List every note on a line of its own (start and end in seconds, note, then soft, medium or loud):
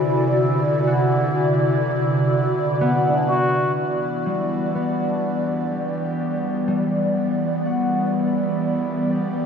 0.00 3.77 C3 medium
0.00 3.77 D3 medium
0.00 3.86 E3 medium
0.00 3.86 E4 medium
0.00 3.77 F#4 medium
0.00 9.46 D5 medium
0.87 3.31 F#4 medium
2.81 4.75 B3 medium
3.10 5.04 D4 medium
3.29 3.78 F#4 medium
3.77 9.46 E3 medium
3.77 5.69 E4 medium
3.97 9.46 B3 medium
4.26 6.67 G3 medium
4.75 7.86 B3 medium
5.04 7.84 D4 soft
5.68 7.14 G4 medium
5.96 9.46 G3 medium
6.68 9.46 G3 medium
7.65 8.17 F#4 medium
7.65 9.46 F#5 soft
8.15 9.12 E4 medium
9.10 9.46 G4 medium